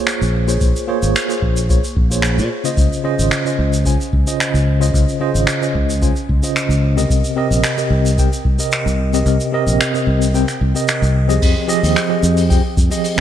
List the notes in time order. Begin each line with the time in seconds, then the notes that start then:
Already playing: A#3 F4 G#4 C5 C#5
0.07 finger snap, shaker
0.22 A#1, shaker
0.47 A#3 F4 G#4 C5 C#5, shaker
0.61 A#1, kick, shaker
0.76 shaker
0.87 A#3 F4 G#4 C5 C#5
1.03 G#1, shaker
1.16 finger snap, shaker
1.28 A#3 F4 G#4 C5 C#5, shaker
1.42 A#1, kick
1.57 shaker
1.69 A#3 F4 G#4 C5 C#5, kick, shaker
1.84 shaker
1.96 A#1, kick
2.10 A#3 F4 G#4 C5 C#5, shaker
2.22 finger snap, shaker
2.38 A#2, shaker
2.64 C#3 C#4 F4 C5 D#5, shaker
2.77 C#2, kick, shaker
2.93 shaker
3.03 C#3 C#4 F4 C5 D#5
3.19 G#1, shaker
3.31 finger snap, shaker
3.45 C#3 C#4 F4 C5 D#5, shaker
3.59 C#2
3.73 shaker
3.85 C#3 C#4 F4 C5 G#5, kick, shaker
4.01 shaker
4.13 C#2, kick
4.26 C#3 C#4 F4 C5 D#5, shaker
4.40 finger snap, shaker
4.54 C#2, shaker
4.80 C#3 C#4 F4 C5 D#5, shaker
4.94 C#2, kick, shaker
5.09 shaker
5.20 C#3 C#4 F4 C5 D#5
5.35 G#1, shaker
5.47 finger snap, shaker
5.61 C#3 C#4 F4 C5 D#5, shaker
5.75 C#2, kick
5.90 shaker
6.01 C#3 C#4 F4 C5 G#5, kick, shaker
6.16 shaker
6.29 C#2, kick
6.43 C#3 C#4 F4 C5 D#5, shaker
6.56 finger snap, shaker
6.69 C#2, shaker
6.96 C3 C4 G4 A#4 D#5, shaker
7.10 C2, kick, shaker
7.24 shaker
7.36 C3 C4 G4 A#4 D#5
7.51 A#1, shaker
7.64 finger snap, shaker
7.77 C3 C4 G4 A#4 D#5, shaker
7.90 C2
8.06 shaker
8.18 C3 C4 G4 A#4 G5, kick, shaker
8.33 shaker
8.45 C2, kick
8.58 C3 C4 G4 A#4 D#5, shaker
8.72 finger snap, shaker
8.86 C2, shaker
9.13 C3 C4 G4 A#4 D#5, shaker
9.26 C2, shaker
9.40 shaker
9.52 C3 C4 G4 A#4 D#5
9.67 A#1, shaker
9.81 finger snap, shaker
9.94 C3 C4 G4 A#4 D#5, shaker
10.07 C2
10.22 shaker
10.33 C3 C4 G4 A#4 G5, shaker
10.48 finger snap, shaker
10.61 C2
10.74 C3 C4 G4 A#4 D#5, shaker
10.88 finger snap, shaker
11.02 C2, shaker
11.28 F3 C4 G4 G#4 D#5, shaker
11.42 F2, kick, open hi-hat, crash, shaker
11.68 F3 C4 G4 G#4 D#5, shaker
11.83 D#2, open hi-hat, shaker
11.96 finger snap, open hi-hat, shaker
12.09 F3 C4 G4 G#4 D#5
12.23 F2, shaker
12.37 open hi-hat, shaker
12.49 F3 C4 G4 G#4 G5, kick, open hi-hat, shaker
12.77 F2, kick, shaker
12.90 F3 C4 G4 G#4 D#5, open hi-hat, shaker
13.04 open hi-hat, shaker
13.16 F3 C4